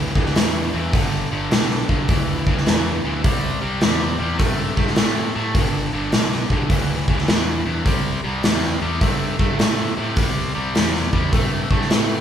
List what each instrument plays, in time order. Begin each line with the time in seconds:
Already playing: fingered electric bass D2, distorted electric guitar G2 E3
0.15 fingered electric bass D2, distorted electric guitar G2 E3, kick
0.26 snare
0.35 fingered electric bass E2, distorted electric guitar G2 E3, snare, open hi-hat
0.72 fingered electric bass E2, distorted electric guitar G2 E3
0.92 fingered electric bass G1, distorted electric guitar G2 D3, kick, open hi-hat
1.31 fingered electric bass G1, distorted electric guitar G2 D3
1.50 fingered electric bass B1, distorted electric guitar G2 D3, snare, open hi-hat
1.70 snare
1.88 fingered electric bass B1, distorted electric guitar G2 D3, kick
2.08 fingered electric bass D2, distorted electric guitar G2 E3, kick, open hi-hat
2.46 fingered electric bass D2, distorted electric guitar G2 E3, kick
2.58 snare
2.66 fingered electric bass E2, distorted electric guitar G2 E3, snare, open hi-hat
3.04 fingered electric bass D2, distorted electric guitar G2 E3
3.24 fingered electric bass C2, distorted electric guitar C3 G3, kick, open hi-hat
3.61 fingered electric bass C2, distorted electric guitar C3 G3
3.81 fingered electric bass E2, distorted electric guitar C3 G3, snare, open hi-hat
4.19 fingered electric bass E2, distorted electric guitar C3 G3
4.38 fingered electric bass G2, distorted electric guitar C3 A3, kick, open hi-hat
4.76 fingered electric bass G2, distorted electric guitar C3 A3, kick
4.87 snare
4.96 fingered electric bass A2, distorted electric guitar C3 A3, snare, open hi-hat
5.35 fingered electric bass A2, distorted electric guitar C3 A3
5.55 fingered electric bass G1, distorted electric guitar G2 D3, kick, open hi-hat
5.93 fingered electric bass G1, distorted electric guitar G2 D3
6.12 fingered electric bass B1, distorted electric guitar G2 D3, snare, open hi-hat
6.32 snare
6.50 fingered electric bass B1, distorted electric guitar G2 D3, kick
6.70 fingered electric bass D2, distorted electric guitar G2 E3, kick, open hi-hat
7.08 fingered electric bass D2, distorted electric guitar G2 E3, kick
7.18 snare
7.27 fingered electric bass E2, distorted electric guitar G2 E3, snare, open hi-hat
7.65 fingered electric bass E2, distorted electric guitar G2 E3
7.85 fingered electric bass C2, distorted electric guitar C3 G3, kick, open hi-hat
8.23 fingered electric bass C2, distorted electric guitar C3 G3
8.43 fingered electric bass E2, distorted electric guitar C3 G3, snare, open hi-hat
8.63 snare
8.81 fingered electric bass E2, distorted electric guitar C3 G3
9.01 fingered electric bass G2, distorted electric guitar C3 A3, kick, open hi-hat
9.39 fingered electric bass G2, distorted electric guitar C3 A3, kick
9.59 fingered electric bass A2, distorted electric guitar C3 A3, snare, open hi-hat
9.96 fingered electric bass A2, distorted electric guitar C3 A3
10.16 fingered electric bass C2, distorted electric guitar C3 G3, kick, open hi-hat
10.54 fingered electric bass C2, distorted electric guitar C3 G3
10.74 fingered electric bass E2, distorted electric guitar C3 G3, snare, open hi-hat
10.95 snare
11.13 fingered electric bass E2, distorted electric guitar C3 G3, kick
11.33 fingered electric bass G2, distorted electric guitar C3 A3, kick, open hi-hat
11.71 fingered electric bass G2, distorted electric guitar C3 A3, kick
11.82 snare
11.90 fingered electric bass A2, distorted electric guitar C3 A3, snare, open hi-hat